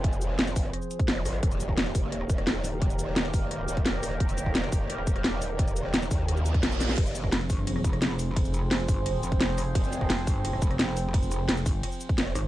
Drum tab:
CC |----------------|----------------|----------------|----------------|
RD |----------------|----------------|----------------|----------------|
HH |xxx-xxo-x-xxx-o-|xxx-xxo-x-xxx-o-|xxx-xxo-x-xxx-o-|xxx-xxo-x-xxx-o-|
SH |-xx--xx--xx---x-|-xx---x---x---x-|-xx---x---x---x-|-xx---x---x---x-|
SD |----o---r---orr-|---ro---rr-ro---|----o---r---orr-|---ro---rr-ro---|
BD |o-----o----o----|o--o--o---o-----|o-----o----o----|o--o--o---o-----|

CC |----------------|x---------------|----------------|----------------|
RD |----------------|b---b---b---b---|b---b---b---b---|b---b---b---b---|
HH |xxx-xxo-x-xxx-o-|xxx-xxo-x-xxx-o-|xxx-xxo-x-xxx-o-|xxx-xxo-x-xxx-o-|
SH |-xx--xx--xx--xx-|-xx---x---x---x-|-xx---x---x---x-|-xx---x---x---x-|
SD |---ro---r---oroo|---ro---rr-ro---|----o---r---orr-|---ro---rr-ro---|
BD |o-----o----o----|o--o--o---o-----|o-----o----o----|o--o--o---o-----|

CC |----------------|
RD |b---b---b---b---|
HH |xxx-xxo-x-xxx-o-|
SH |-xx--xx--xx---x-|
SD |----o---r---orr-|
BD |o-----o----o----|